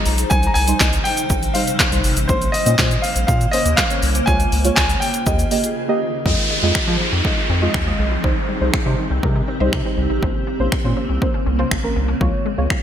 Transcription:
Already playing: F3 G#3 D#4 F4 G#4 C5 D#5 A#5
0.06 B1, open hi-hat, shaker
0.18 closed hi-hat, shaker
0.30 C2 C3 G3 D#4 C5 G#5, kick, shaker
0.43 A#5, closed hi-hat, shaker
0.54 C2 G#5, open hi-hat, shaker
0.68 G3 D#4 C5, closed hi-hat, shaker
0.80 C2 G3 D#4 D#5, kick, snare, clap, shaker
0.93 closed hi-hat, shaker
1.04 G5, open hi-hat, shaker
1.17 closed hi-hat, shaker
1.30 A#1, kick, shaker
1.43 closed hi-hat, shaker
1.54 G3 D#4 C5 F5, open hi-hat, shaker
1.67 closed hi-hat, shaker
1.80 kick, snare, clap, shaker
1.92 C2 G3 D#4 C5, closed hi-hat, shaker
2.04 G#1, open hi-hat, shaker
2.17 A1, closed hi-hat, shaker
2.28 A#1 C#3 A#3 C#4 C5, kick, shaker
2.42 closed hi-hat, shaker
2.52 D#5, open hi-hat, shaker
2.66 A#2 A#3 C#4 D#5, closed hi-hat, shaker
2.79 A#2 A#3 C#4 C5, kick, snare, clap, shaker
2.91 closed hi-hat, shaker
3.02 F5, open hi-hat, shaker
3.16 A#1, closed hi-hat, shaker
3.27 A#2 F5, kick, shaker
3.41 closed hi-hat, shaker
3.51 A#3 C#4 C5 D#5, open hi-hat, shaker
3.66 D#2, closed hi-hat, shaker
3.76 F5, kick, snare, clap, shaker
3.90 A#3 C#4 C#5, closed hi-hat, shaker
4.03 C2, open hi-hat, shaker
4.15 closed hi-hat, shaker
4.26 C#2 G#3 F4 C#5 G#5, kick, shaker
4.40 closed hi-hat, shaker
4.52 C#2, open hi-hat, shaker
4.64 G#3 F4 C#5, closed hi-hat, shaker
4.76 C#2 G#5, kick, snare, clap, shaker
4.90 closed hi-hat, shaker
5.00 G5, open hi-hat, shaker
5.14 closed hi-hat, shaker
5.26 D#2 A#3 G4 D#5, kick, shaker
5.39 closed hi-hat, shaker
5.51 A#3 G4 D#5, open hi-hat, shaker
5.64 closed hi-hat, shaker
5.88 A#3 G4 D#5
6.25 F2 F3 G#3 C4 D#4 F4 G#4 D#5, kick, downlifter
6.51 G#3
6.63 F2 G#3 F4 D#5
6.75 F3, finger snap, kick
6.88 F3 G#3 F4 C5
7.00 F3
7.12 F2 C4
7.25 G#3 F4 D#5, kick
7.37 D#4
7.50 F2 C4
7.62 G#3 F4 D#5
7.74 D#2 F3, finger snap, kick
7.87 G#3 C4 F4 D#5
7.99 B1 G#3
8.12 D#4
8.24 C2 C3 D#3 G3 D#4 G4 C5, kick
8.49 G3
8.61 C2 G3 D#4 C5
8.74 C3, finger snap, kick
8.86 C3 G3 D#4 C5 D#5
8.98 D#3
9.11 C2 C4
9.23 C3 G3 D#4 A#4, kick
9.36 D#4
9.48 C4
9.60 C2 G3 D#4 C5 D#5
9.73 C3 D#3, finger snap, kick
9.85 G3 C4 D#4 C5
9.98 C2 G3
10.10 A1 D#4
10.22 A#1 C#3 F3 A#3 C#4 C5, kick
10.47 A#3
10.60 A#1 A#3 C#4 C5
10.72 A#2, finger snap, kick
10.84 A#2 A#3 C#4 F4 C5
10.97 F3
11.09 C2 C4
11.21 A#3 C#4 C5, kick
11.34 C#4
11.46 C2 C4
11.59 A#3 C#4 F4 C5
11.71 A#1 F3, finger snap, kick
11.83 A#3 C4 C#4 A#4
11.96 C2 A#3
12.08 C#4
12.21 C#2 C#3 F3 G#3 C#4 F4 G#4 C#5, kick
12.46 G#3
12.58 C#2 G#3 F4 C#5
12.70 C#3, finger snap, kick

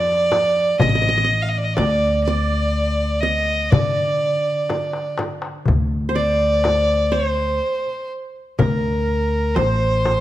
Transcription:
Already playing: F2 D5
0.32 darbuka tek, frame drum
0.80 A1 D#5, frame drum, darbuka dum
0.89 D#5
0.95 D#5
1.02 D#5
1.09 D#5
1.18 D#5
1.24 D#5
1.29 darbuka ka
1.42 F5
1.49 D#5
1.58 D5
1.65 D#5
1.74 D2 D5, darbuka tek, frame drum
2.24 D5
3.00 darbuka ka
3.20 D#5
3.71 D3 D5, frame drum, darbuka dum
4.69 darbuka tek, frame drum
4.93 darbuka ka
5.18 darbuka tek, frame drum
5.42 darbuka ka
5.66 D2, darbuka dum, frame drum
6.09 C5
6.15 D5
6.64 darbuka tek, frame drum
7.12 C5
7.86 darbuka ka
8.59 D2 A#4, darbuka dum, frame drum
9.55 A1 C5, darbuka tek, frame drum
10.05 darbuka tek, frame drum

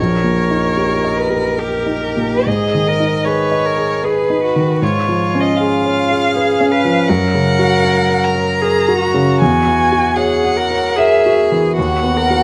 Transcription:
Already playing: C#5
0.00 A#1 A#4
0.24 A#2
0.50 D#4
0.77 G4
1.04 D#5
1.17 B4
1.30 G4
1.56 G4 A#4
1.86 D#4
2.04 G4
2.17 A#2
2.46 G#2 G#4 D#5
2.74 D#3
2.88 A#4
3.00 D#4
3.25 G#4 B4 C#5
3.52 D#5
3.65 A#4
3.78 G#4
4.03 G#4 B4
4.30 D#4
4.43 F#4
4.56 D#3
4.82 G#2 F4 C#5
5.08 F3
5.35 C#4
5.40 D#5
5.57 F4 G#4 F5
5.86 C#5
6.11 G#4
6.35 G#4 B4
6.61 C#4
6.70 B4 F5
6.85 F3
7.08 F#2 A#4 F#5
7.34 C#3
7.59 F#4
7.85 C#5
8.10 F#5
8.24 A#5
8.35 C#5
8.62 G#4 A#4
8.88 F#4
9.00 F#4
9.14 C#3
9.41 E2 G#5
9.67 E3
9.92 F#4
10.16 G#4 C#5 F#5
10.44 F#5
10.56 A#4
10.71 C#5
10.96 G#4 A#4 E5
11.26 F#4
11.52 E3
11.76 D#2 F#4 F#5
12.03 B3
12.17 A#4
12.30 F#4 B4

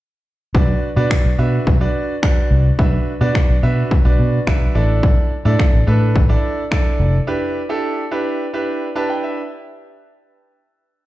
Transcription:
0.54 B1 D4 F#4 B4 D5, kick
0.96 B2 D4 F#4 B4 D5
1.11 finger snap, kick
1.25 B1
1.38 B2 D4 F#4 B4 E5
1.67 B1, kick
1.81 D4 F#4 B4 D5
2.22 D4 F#4 B4 D5, finger snap, kick
2.51 C2
2.79 B1 D4 F#4 B4 E5, kick
3.21 B2 D4 F#4 B4 D5
3.35 finger snap, kick
3.49 B1
3.63 B2 D4 F#4 B4 E5
3.91 kick
4.05 B1 D4 F#4 B4 D5
4.19 B2
4.47 B1 D4 F#4 B4 E5, finger snap, kick
4.75 A1 D4 E4 A4 D5
5.03 kick
5.45 A2 D4 E4 A4 D5
5.59 finger snap, kick
5.73 A1
5.87 A2 D4 E4 A4 B4
6.16 A1, kick
6.29 D4 E4 A4 D5
6.71 D4 E4 A4 D5, finger snap, kick
7.00 F1
7.27 D4 E4 G4 B4
7.69 D4 E4 G4 A4
8.11 D4 E4 G4 B4
8.53 D4 E4 G4 B4
8.95 D4 E4 G4 B4 A5
9.10 G5
9.24 E5

